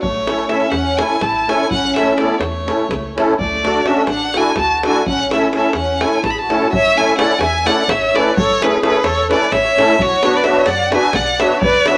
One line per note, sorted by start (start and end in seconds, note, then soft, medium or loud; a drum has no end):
0.01 0.44 A1 medium
0.01 0.47 A3 medium
0.01 0.51 C#5 loud
0.01 davul low medium
0.14 davul high soft
0.27 0.44 A3 medium
0.27 0.44 C#4 medium
0.27 0.45 E4 medium
0.27 0.45 A4 medium
0.27 davul high medium
0.38 davul high soft
0.47 0.65 A3 medium
0.47 0.65 C#4 medium
0.47 0.66 E4 medium
0.47 0.66 A4 medium
0.47 0.72 E5 medium
0.47 davul high medium
0.52 0.72 C#4 medium
0.60 davul high soft
0.70 1.01 E2 loud
0.70 0.99 F#5 medium
0.70 davul high medium
0.74 1.00 C#4 medium
0.97 1.15 A3 medium
0.97 1.15 C#4 medium
0.97 1.16 E4 soft
0.97 1.22 E4 medium
0.97 1.16 A4 medium
0.97 1.24 G#5 loud
0.97 davul high medium
1.21 1.52 A1 loud
1.21 1.50 E4 medium
1.21 1.51 A5 loud
1.21 davul high medium
1.21 davul low medium
1.47 1.65 A3 medium
1.47 1.65 C#4 medium
1.47 1.66 E4 medium
1.47 1.66 A4 medium
1.47 1.71 G#5 medium
1.47 davul high medium
1.52 1.73 E4 medium
1.71 2.12 A1 medium
1.71 1.95 C#4 medium
1.71 1.95 F#5 loud
1.71 davul low medium
1.85 davul high soft
1.95 2.12 A3 medium
1.95 2.13 C#4 medium
1.95 2.18 C#4 medium
1.95 2.13 E4 medium
1.95 2.13 A4 medium
1.95 2.19 E5 medium
1.95 davul high medium
2.08 davul high soft
2.17 2.35 A3 medium
2.17 2.41 B3 medium
2.17 2.35 C#4 medium
2.17 2.35 E4 medium
2.17 2.35 A4 medium
2.17 2.40 D5 medium
2.17 davul high medium
2.30 davul high soft
2.38 2.70 E2 medium
2.38 3.17 A3 medium
2.38 3.16 C#5 medium
2.38 davul high medium
2.66 2.84 A3 medium
2.66 2.84 C#4 medium
2.66 2.85 E4 medium
2.66 2.85 A4 medium
2.66 davul high medium
2.89 3.19 C#2 loud
2.89 davul high medium
2.89 davul low medium
3.16 3.34 A3 medium
3.16 3.34 C#4 medium
3.16 3.34 E4 medium
3.16 3.34 A4 medium
3.16 davul high medium
3.39 3.80 D2 medium
3.39 3.83 A3 medium
3.39 3.89 D5 loud
3.39 davul low medium
3.53 davul high soft
3.63 3.81 A3 medium
3.63 3.81 D4 medium
3.63 3.81 F#4 medium
3.63 3.81 A4 medium
3.63 davul high medium
3.76 davul high soft
3.84 4.02 A3 medium
3.84 4.08 C#4 medium
3.84 4.02 D4 medium
3.84 4.02 F#4 medium
3.84 4.03 A4 medium
3.84 4.08 E5 medium
3.84 davul high medium
3.97 davul high soft
4.07 4.37 A1 medium
4.07 4.33 D4 medium
4.07 4.39 F#5 loud
4.07 davul high medium
4.34 4.51 A3 medium
4.34 4.52 D4 medium
4.34 4.58 E4 medium
4.34 4.52 F#4 medium
4.34 4.53 A4 medium
4.34 4.58 G#5 loud
4.34 davul high medium
4.56 4.86 D2 medium
4.56 4.83 F#4 medium
4.56 4.83 A5 loud
4.56 davul high medium
4.56 davul low medium
4.83 5.01 A3 medium
4.83 5.01 D4 medium
4.83 5.06 E4 medium
4.83 5.02 F#4 medium
4.83 5.02 A4 medium
4.83 davul high medium
4.87 5.07 G#5 medium
5.06 5.47 A1 medium
5.06 5.30 C#4 medium
5.06 5.31 F#5 loud
5.06 davul low medium
5.20 davul high soft
5.31 5.48 A3 medium
5.31 5.48 C#4 medium
5.31 5.52 C#4 medium
5.31 5.48 E4 medium
5.31 5.48 A4 medium
5.31 5.52 E5 medium
5.31 davul high medium
5.42 davul high soft
5.53 5.69 A3 medium
5.53 5.69 C#4 medium
5.53 5.74 C#4 medium
5.53 5.70 E4 medium
5.53 5.70 A4 medium
5.53 5.74 E5 medium
5.53 davul high medium
5.63 davul high soft
5.73 6.04 E2 medium
5.73 6.00 C#4 medium
5.73 6.02 F#5 medium
5.73 davul high medium
6.00 6.18 A3 soft
6.00 6.18 C#4 medium
6.00 6.19 E4 medium
6.00 6.23 E4 medium
6.00 6.19 A4 medium
6.00 6.23 G#5 loud
6.00 davul high medium
6.23 6.53 A1 medium
6.23 6.31 E4 medium
6.23 6.32 A5 medium
6.23 davul high medium
6.23 davul low medium
6.30 6.39 G#4 medium
6.30 6.40 B5 medium
6.37 6.72 A5 medium
6.37 davul high soft
6.41 6.74 F#4 medium
6.49 6.66 A3 medium
6.49 6.67 C#4 medium
6.49 6.67 E4 medium
6.49 6.68 A4 medium
6.49 davul high medium
6.62 davul high soft
6.73 6.88 A1 medium
6.73 6.97 C#5 loud
6.73 6.99 E5 loud
6.73 davul low loud
6.96 7.13 A3 medium
6.96 7.13 C#4 medium
6.96 7.13 E4 medium
6.96 7.14 A4 medium
6.96 7.18 G#5 loud
7.00 7.20 E5 loud
7.16 7.33 A3 medium
7.16 7.34 C#4 medium
7.16 7.34 E4 medium
7.16 7.35 A4 medium
7.16 7.39 D5 loud
7.16 7.40 F#5 loud
7.16 davul high medium
7.39 7.69 E2 loud
7.39 7.67 E5 loud
7.39 7.68 G#5 loud
7.39 davul high medium
7.65 7.83 A3 medium
7.65 7.83 C#4 medium
7.65 7.83 E4 medium
7.65 7.83 A4 medium
7.65 7.88 D5 medium
7.65 7.91 F#5 loud
7.65 davul high medium
7.88 8.17 A1 loud
7.88 8.15 C#5 medium
7.88 8.17 E5 loud
7.88 davul high medium
7.88 davul low medium
8.03 davul high soft
8.13 8.31 A3 medium
8.13 8.31 C#4 medium
8.13 8.31 E4 medium
8.13 8.32 A4 medium
8.13 8.37 B4 medium
8.13 8.36 D5 loud
8.13 davul high medium
8.27 davul high soft
8.37 8.52 A1 loud
8.37 8.60 A4 loud
8.37 8.64 C#5 loud
8.37 davul low loud
8.60 8.77 A3 medium
8.60 8.77 C#4 medium
8.60 8.77 E4 medium
8.60 8.83 G#4 medium
8.60 8.78 A4 medium
8.60 8.82 B4 loud
8.60 davul high medium
8.82 8.98 A3 medium
8.82 8.98 C#4 medium
8.82 8.99 E4 medium
8.82 9.03 G#4 medium
8.82 8.99 A4 medium
8.82 9.06 B4 loud
8.82 davul high medium
9.04 9.33 E2 loud
9.04 9.30 A4 loud
9.04 9.31 C#5 loud
9.04 davul high medium
9.17 davul high soft
9.29 9.46 A3 medium
9.29 9.46 C#4 medium
9.29 9.47 E4 medium
9.29 9.47 A4 medium
9.29 9.50 B4 medium
9.29 9.54 D5 loud
9.29 davul high medium
9.52 9.81 A1 loud
9.52 10.01 C#5 medium
9.52 10.04 E5 loud
9.52 davul high medium
9.52 davul low medium
9.65 davul high soft
9.77 9.95 A3 medium
9.77 9.95 C#4 medium
9.77 9.95 E4 medium
9.77 9.96 A4 medium
9.77 davul high medium
9.89 davul high soft
9.99 10.15 B1 loud
9.99 10.35 F#4 loud
9.99 10.38 C#5 loud
9.99 davul low medium
10.23 10.40 B3 medium
10.23 10.40 D4 medium
10.23 10.40 F#4 medium
10.23 10.41 B4 medium
10.23 davul high medium
10.34 10.45 B4 medium
10.34 10.46 D5 loud
10.44 10.61 B3 medium
10.44 10.61 D4 medium
10.44 10.62 F#4 medium
10.44 10.62 B4 medium
10.44 10.67 C#5 loud
10.44 10.68 E5 medium
10.44 davul high medium
10.65 10.95 F#2 loud
10.65 10.92 D5 loud
10.65 10.92 F#5 loud
10.65 davul high medium
10.79 davul high soft
10.91 11.09 B3 medium
10.91 11.09 D4 medium
10.91 11.09 F#4 medium
10.91 11.10 B4 medium
10.91 11.12 E5 loud
10.91 11.17 G#5 loud
10.91 davul high medium
11.13 11.44 B1 loud
11.13 11.41 D5 medium
11.13 11.42 F#5 loud
11.13 davul high medium
11.13 davul low medium
11.27 davul high soft
11.40 11.57 B3 medium
11.40 11.58 D4 medium
11.40 11.58 F#4 medium
11.40 11.58 B4 medium
11.40 11.63 C#5 medium
11.40 11.61 E5 loud
11.40 davul high medium
11.50 davul high soft
11.61 11.78 B1 medium
11.61 11.86 B4 loud
11.61 11.90 D5 loud
11.61 davul low loud
11.75 davul high soft
11.86 11.98 B3 medium
11.86 11.98 D4 medium
11.86 11.98 F#4 medium
11.86 11.98 B4 medium
11.86 11.98 C#5 medium
11.86 11.98 E5 loud
11.86 davul high medium